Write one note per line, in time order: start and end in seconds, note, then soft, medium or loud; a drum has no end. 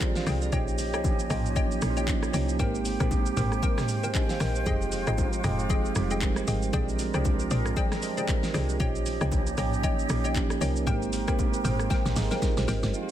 0.00 0.52 F3 medium
0.00 0.55 G#3 medium
0.00 0.55 C4 medium
0.00 0.54 D4 medium
0.00 0.19 F4 loud
0.00 0.50 F4 medium
0.00 0.54 G4 medium
0.00 0.24 G#4 medium
0.00 0.50 A#4 medium
0.00 0.24 C5 medium
0.00 0.24 D5 medium
0.00 0.50 D5 medium
0.00 0.16 D5 medium
0.00 0.24 G5 medium
0.00 0.16 G5 medium
0.00 kick medium
0.00 clap loud
0.00 high bongo medium
0.00 shaker medium
0.16 0.41 C5 medium
0.16 0.41 F5 medium
0.16 snare medium
0.16 shaker medium
0.26 0.51 C2 loud
0.26 0.51 G#4 medium
0.26 0.51 C5 medium
0.26 0.51 D5 medium
0.26 0.51 G5 medium
0.26 cross-stick loud
0.26 snare medium
0.26 open hi-hat medium
0.26 low conga medium
0.26 shaker loud
0.42 0.67 G#4 medium
0.42 0.67 D5 medium
0.42 shaker medium
0.52 0.95 A#1 loud
0.52 0.84 F3 medium
0.52 0.85 A#3 medium
0.52 0.85 C#4 medium
0.52 0.85 D#4 medium
0.52 2.58 G4 medium
0.52 0.85 G4 loud
0.52 0.90 C#5 loud
0.52 2.58 C#5 medium
0.52 0.90 D#5 medium
0.52 2.58 D#5 medium
0.52 0.90 G5 loud
0.52 kick loud
0.52 low conga medium
0.52 shaker medium
0.68 shaker soft
0.79 open hi-hat medium
0.79 low bongo medium
0.79 shaker loud
0.93 1.28 C2 medium
0.93 1.23 F3 medium
0.93 1.24 A#3 medium
0.93 1.24 C#4 medium
0.93 1.24 D#4 medium
0.93 1.25 G4 loud
0.93 1.04 C#5 medium
0.93 1.04 D#5 medium
0.93 1.04 G5 medium
0.93 cross-stick loud
0.93 shaker medium
1.04 kick loud
1.04 high bongo medium
1.04 low bongo medium
1.04 shaker medium
1.19 shaker medium
1.30 1.78 A#1 loud
1.30 1.73 F3 medium
1.30 1.73 A#3 medium
1.30 1.74 C#4 medium
1.30 1.74 D#4 medium
1.30 1.74 F4 loud
1.30 1.44 C#5 medium
1.30 1.44 D#5 medium
1.30 1.44 G5 medium
1.30 cross-stick medium
1.30 mid tom medium
1.30 open hi-hat medium
1.30 shaker loud
1.46 shaker soft
1.56 1.93 C#5 loud
1.56 1.93 D#5 medium
1.56 1.94 G5 loud
1.56 kick loud
1.56 low conga medium
1.56 shaker medium
1.71 shaker soft
1.81 2.30 A#1 medium
1.81 2.25 F3 medium
1.81 2.25 A#3 medium
1.81 2.25 C#4 medium
1.81 2.26 D#4 medium
1.81 1.90 E4 medium
1.81 cross-stick loud
1.81 open hi-hat medium
1.81 shaker loud
1.90 2.29 F4 loud
1.97 2.31 C#5 medium
1.97 2.31 D#5 medium
1.97 2.31 G5 medium
1.97 low bongo medium
1.97 shaker medium
2.07 kick medium
2.07 clap loud
2.07 high bongo medium
2.07 shaker medium
2.23 cross-stick medium
2.23 shaker medium
2.33 2.58 C2 loud
2.33 2.55 F3 medium
2.33 2.55 A#3 medium
2.33 2.55 C#4 medium
2.33 2.56 D#4 medium
2.33 2.56 G4 loud
2.33 2.58 C#5 medium
2.33 2.58 D#5 medium
2.33 2.58 G5 medium
2.33 open hi-hat medium
2.33 low conga medium
2.33 shaker medium
2.49 shaker medium
2.59 2.97 G#1 loud
2.59 2.91 G#3 medium
2.59 2.91 A#3 medium
2.59 2.92 C4 medium
2.59 2.92 D#4 medium
2.59 4.40 G4 medium
2.59 2.92 G4 loud
2.59 2.97 A#4 loud
2.59 2.97 C5 medium
2.59 6.45 C5 medium
2.59 6.69 G5 medium
2.59 2.97 G5 loud
2.59 kick loud
2.59 low conga medium
2.59 shaker medium
2.75 shaker soft
2.85 open hi-hat medium
2.85 low bongo medium
2.85 shaker loud
3.00 3.34 A#1 loud
3.00 3.30 G#3 medium
3.00 3.31 A#3 medium
3.00 3.31 C4 medium
3.00 3.31 D#4 medium
3.00 3.31 G4 loud
3.00 3.10 A#4 medium
3.00 3.10 C5 medium
3.00 3.11 G5 medium
3.00 kick loud
3.00 cross-stick loud
3.00 shaker medium
3.11 kick medium
3.11 high bongo medium
3.11 low bongo medium
3.11 shaker medium
3.26 shaker medium
3.36 3.61 G#1 loud
3.36 3.80 G#3 medium
3.36 3.80 A#3 medium
3.36 3.80 C4 medium
3.36 3.81 D#4 medium
3.36 3.81 G4 medium
3.36 3.51 A#4 medium
3.36 3.51 C5 medium
3.36 3.51 G5 medium
3.36 mid tom medium
3.36 open hi-hat medium
3.36 shaker loud
3.52 cross-stick medium
3.52 shaker soft
3.63 4.00 A#4 loud
3.63 4.00 C5 medium
3.63 4.00 G5 loud
3.63 kick loud
3.63 low conga medium
3.63 shaker medium
3.78 cross-stick medium
3.78 snare medium
3.78 mid tom medium
3.78 high bongo medium
3.78 shaker soft
3.89 open hi-hat medium
3.89 shaker loud
4.03 4.38 A#4 medium
4.03 4.38 C5 medium
4.03 4.38 G5 medium
4.03 low bongo medium
4.03 shaker medium
4.14 4.30 D#5 medium
4.14 4.29 G#5 medium
4.14 kick medium
4.14 clap loud
4.14 high bongo medium
4.14 shaker medium
4.29 4.41 C5 medium
4.29 4.40 F5 medium
4.29 snare medium
4.29 shaker medium
4.40 4.64 A#1 loud
4.40 4.65 A#4 medium
4.40 4.56 A#4 medium
4.40 4.65 C5 medium
4.40 4.55 D#5 medium
4.40 4.65 G5 medium
4.40 cross-stick medium
4.40 snare medium
4.40 open hi-hat medium
4.40 high bongo medium
4.40 low conga medium
4.40 shaker medium
4.55 4.67 G4 medium
4.55 4.80 C5 medium
4.55 shaker medium
4.66 5.04 F1 loud
4.66 4.98 F3 medium
4.66 4.98 G#3 medium
4.66 4.99 C4 medium
4.66 4.99 D#4 medium
4.66 6.71 F4 medium
4.66 4.99 G4 loud
4.66 5.04 G#4 loud
4.66 6.71 D#5 medium
4.66 5.04 D#5 medium
4.66 6.71 F5 medium
4.66 5.04 G5 loud
4.66 kick loud
4.66 low conga medium
4.66 shaker medium
4.82 shaker soft
4.92 open hi-hat medium
4.92 low bongo soft
4.92 shaker loud
5.07 5.41 G#1 medium
5.07 5.37 F3 medium
5.07 5.37 G#3 medium
5.07 5.38 C4 medium
5.07 5.38 D#4 medium
5.07 5.38 F4 medium
5.07 5.17 G#4 medium
5.07 5.17 D#5 medium
5.07 5.18 G5 medium
5.07 cross-stick medium
5.07 shaker medium
5.18 kick medium
5.18 high bongo medium
5.18 low bongo medium
5.18 shaker medium
5.33 shaker medium
5.43 5.92 F1 loud
5.43 5.87 F3 medium
5.43 5.87 G#3 medium
5.43 5.87 C4 medium
5.43 5.88 D#4 medium
5.43 5.88 G4 medium
5.43 5.58 G#4 medium
5.43 5.58 D#5 medium
5.43 5.58 G5 medium
5.43 cross-stick medium
5.43 mid tom medium
5.43 open hi-hat medium
5.43 shaker loud
5.59 shaker soft
5.70 6.07 G#4 medium
5.70 6.07 D#5 medium
5.70 6.08 G5 loud
5.70 kick loud
5.70 low conga medium
5.70 shaker medium
5.85 shaker soft
5.95 6.44 F1 loud
5.95 6.39 F3 medium
5.95 6.03 G3 medium
5.95 6.39 C4 medium
5.95 6.39 D#4 medium
5.95 6.23 G4 loud
5.95 cross-stick loud
5.95 open hi-hat medium
5.95 shaker loud
6.02 6.42 G#3 medium
6.11 6.45 G#4 medium
6.11 6.45 D#5 medium
6.11 6.45 G5 medium
6.11 low bongo medium
6.11 shaker medium
6.21 6.36 F4 medium
6.21 6.36 A#4 medium
6.21 kick medium
6.21 clap loud
6.21 high bongo medium
6.21 shaker medium
6.36 6.48 G4 medium
6.36 6.47 C5 medium
6.36 cross-stick medium
6.36 shaker medium
6.47 6.71 G#1 loud
6.47 6.72 G#4 medium
6.47 6.62 A#4 medium
6.47 6.72 D#5 medium
6.47 6.62 D#5 medium
6.47 6.72 G5 medium
6.47 open hi-hat medium
6.47 low conga medium
6.47 shaker medium
6.62 6.88 C5 medium
6.62 6.87 F5 medium
6.62 shaker soft
6.73 7.11 A#1 loud
6.73 7.05 F3 medium
6.73 7.05 G#3 medium
6.73 7.05 C4 medium
6.73 7.06 D4 medium
6.73 8.78 F4 medium
6.73 7.06 G4 loud
6.73 7.11 G#4 loud
6.73 8.78 A#4 medium
6.73 7.11 C5 medium
6.73 8.78 D5 medium
6.73 7.11 D5 medium
6.73 7.11 G5 loud
6.73 kick loud
6.73 low conga medium
6.73 shaker medium
6.89 shaker soft
6.99 open hi-hat medium
6.99 low bongo medium
6.99 shaker loud
7.13 7.48 C2 medium
7.13 7.44 F3 medium
7.13 7.44 G#3 medium
7.13 7.45 C4 medium
7.13 7.45 D4 medium
7.13 7.45 G4 medium
7.13 7.24 G#4 medium
7.13 7.24 C5 medium
7.13 7.24 D5 medium
7.13 7.25 G5 medium
7.13 cross-stick medium
7.13 shaker medium
7.25 kick loud
7.25 high bongo medium
7.25 low bongo medium
7.25 shaker medium
7.40 shaker medium
7.50 7.75 A#1 loud
7.50 7.93 F3 medium
7.50 7.94 G#3 medium
7.50 7.94 C4 medium
7.50 7.94 D4 medium
7.50 7.65 G#4 medium
7.50 7.95 G#4 loud
7.50 7.65 C5 medium
7.50 7.65 D5 medium
7.50 7.65 G5 medium
7.50 mid tom medium
7.50 open hi-hat medium
7.50 shaker medium
7.66 cross-stick medium
7.66 shaker medium
7.77 8.14 G#4 loud
7.77 8.14 C5 medium
7.77 8.14 D5 medium
7.77 8.14 G5 loud
7.77 kick loud
7.77 low conga medium
7.77 shaker medium
7.92 cross-stick medium
7.92 snare medium
7.92 shaker soft
8.02 8.45 F3 medium
8.02 8.46 G#3 medium
8.02 8.46 C4 medium
8.02 8.46 D4 medium
8.02 8.46 A#4 loud
8.02 open hi-hat medium
8.02 shaker loud
8.17 8.52 G#4 medium
8.17 8.52 C5 medium
8.17 8.52 D5 medium
8.17 8.52 G5 medium
8.17 low bongo medium
8.17 shaker medium
8.27 kick medium
8.27 clap loud
8.27 high bongo medium
8.27 shaker medium
8.43 snare medium
8.43 shaker medium
8.54 8.78 C2 loud
8.54 8.76 F3 medium
8.54 8.76 G#3 medium
8.54 8.76 C4 medium
8.54 8.76 D4 medium
8.54 8.77 G4 medium
8.54 8.78 G#4 medium
8.54 8.78 C5 medium
8.54 8.79 D5 medium
8.54 8.79 G5 medium
8.54 cross-stick loud
8.54 snare medium
8.54 open hi-hat medium
8.54 low conga medium
8.54 shaker medium
8.69 shaker medium
8.79 9.18 A#1 loud
8.79 9.12 F3 medium
8.79 9.12 A#3 medium
8.79 9.12 C#4 medium
8.79 9.12 D#4 medium
8.79 10.85 G4 medium
8.79 9.13 G4 loud
8.79 9.17 C#5 loud
8.79 10.85 C#5 medium
8.79 10.85 D#5 medium
8.79 9.17 D#5 medium
8.79 9.18 G5 loud
8.79 kick loud
8.79 low conga medium
8.79 shaker medium
8.95 shaker soft
9.06 open hi-hat medium
9.06 low bongo medium
9.06 shaker loud
9.20 9.55 C2 loud
9.20 9.51 F3 medium
9.20 9.51 A#3 medium
9.20 9.51 C#4 medium
9.20 9.52 D#4 medium
9.20 9.52 G4 medium
9.20 9.31 C#5 medium
9.20 9.31 D#5 medium
9.20 9.31 G5 medium
9.20 cross-stick medium
9.20 shaker medium
9.32 kick medium
9.32 high bongo medium
9.32 low bongo medium
9.32 shaker medium
9.47 shaker medium
9.57 10.06 A#1 loud
9.57 10.00 F3 medium
9.57 10.01 A#3 medium
9.57 10.01 C#4 medium
9.57 10.01 D#4 medium
9.57 10.02 G4 medium
9.57 9.72 C#5 medium
9.57 9.72 D#5 medium
9.57 9.72 G5 medium
9.57 cross-stick medium
9.57 mid tom medium
9.57 open hi-hat medium
9.57 shaker loud
9.73 shaker medium
9.83 10.21 C#5 loud
9.83 10.21 D#5 medium
9.83 10.21 G5 loud
9.83 kick loud
9.83 low conga medium
9.83 shaker medium
9.99 shaker soft
10.09 10.57 A#1 medium
10.09 10.52 F3 medium
10.09 10.52 A#3 medium
10.09 10.53 C#4 medium
10.09 10.53 D#4 medium
10.09 10.53 G4 loud
10.09 cross-stick loud
10.09 open hi-hat medium
10.09 shaker loud
10.24 10.59 C#5 medium
10.24 10.59 D#5 medium
10.24 10.59 G5 medium
10.24 low bongo medium
10.24 shaker medium
10.34 kick medium
10.34 clap loud
10.34 high bongo medium
10.34 shaker medium
10.50 cross-stick medium
10.50 shaker medium
10.60 10.85 C2 medium
10.60 10.82 F3 medium
10.60 10.83 A#3 medium
10.60 10.83 C#4 medium
10.60 10.83 D#4 medium
10.60 10.83 A#4 medium
10.60 10.85 C#5 medium
10.60 10.85 D#5 medium
10.60 10.86 G5 medium
10.60 open hi-hat medium
10.60 low conga medium
10.60 shaker medium
10.76 shaker medium
10.86 11.30 G#1 loud
10.86 11.18 G#3 medium
10.86 11.19 A#3 medium
10.86 11.19 C4 medium
10.86 11.19 D#4 medium
10.86 11.20 G4 loud
10.86 11.24 A#4 loud
10.86 12.62 A#4 medium
10.86 11.24 C5 medium
10.86 12.92 C5 medium
10.86 11.24 G5 loud
10.86 12.64 G5 medium
10.86 kick loud
10.86 low conga medium
10.86 shaker medium
11.02 shaker soft
11.13 open hi-hat medium
11.13 low bongo medium
11.13 shaker loud
11.27 11.62 A#1 loud
11.27 11.58 G#3 medium
11.27 11.58 A#3 medium
11.27 11.58 C4 medium
11.27 11.58 D#4 medium
11.27 11.59 G4 loud
11.27 11.38 A#4 medium
11.27 11.38 C5 medium
11.27 11.38 G5 medium
11.27 kick loud
11.27 cross-stick loud
11.27 shaker medium
11.39 kick medium
11.39 high bongo medium
11.39 low bongo medium
11.39 shaker medium
11.54 shaker medium
11.64 11.89 G#1 medium
11.64 12.07 G#3 medium
11.64 12.08 A#3 medium
11.64 12.08 C4 medium
11.64 12.08 D#4 medium
11.64 12.08 G#4 loud
11.64 11.78 A#4 medium
11.64 11.79 C5 medium
11.64 11.79 G5 medium
11.64 mid tom medium
11.64 open hi-hat medium
11.64 shaker loud
11.79 cross-stick medium
11.79 shaker medium
11.90 12.28 A#4 loud
11.90 12.28 C5 medium
11.90 12.28 G5 loud
11.90 kick loud
11.90 snare medium
11.90 low conga medium
11.90 shaker medium
12.05 12.16 A#1 medium
12.05 snare medium
12.05 high bongo medium
12.05 shaker soft
12.16 12.30 G#1 loud
12.16 12.59 G#3 medium
12.16 12.59 A#3 medium
12.16 12.60 C4 medium
12.16 12.60 D#4 medium
12.16 12.24 G#4 medium
12.16 snare medium
12.16 open hi-hat medium
12.16 shaker loud
12.24 12.42 A#4 loud
12.31 12.65 A#4 medium
12.31 12.66 C5 medium
12.31 12.66 G5 medium
12.31 snare medium
12.31 low bongo medium
12.31 shaker medium
12.42 12.57 F4 medium
12.42 12.57 A#4 medium
12.42 kick medium
12.42 snare medium
12.42 high bongo medium
12.42 shaker medium
12.57 12.67 A#1 medium
12.57 12.68 G4 medium
12.57 12.68 C5 medium
12.57 snare medium
12.57 shaker medium
12.68 12.82 G#1 medium
12.68 12.92 A#4 medium
12.68 12.83 A#4 medium
12.68 12.92 C5 medium
12.68 12.83 D#5 medium
12.68 12.92 G5 medium
12.68 snare loud
12.68 open hi-hat medium
12.68 high bongo medium
12.68 low conga medium
12.68 shaker medium
12.83 12.93 G1 medium
12.83 13.08 C5 medium
12.83 13.08 G5 medium
12.83 snare loud
12.83 shaker medium
12.92 13.11 F3 medium
12.92 13.11 G#3 medium
12.92 13.11 C4 medium
12.92 13.11 D#4 medium
12.92 13.11 F4 medium
12.92 13.11 C5 medium
12.92 13.11 D#5 medium
12.92 13.11 F5 medium
12.92 13.11 G5 medium
12.92 shaker medium
12.97 13.03 F4 medium
13.03 13.11 G4 medium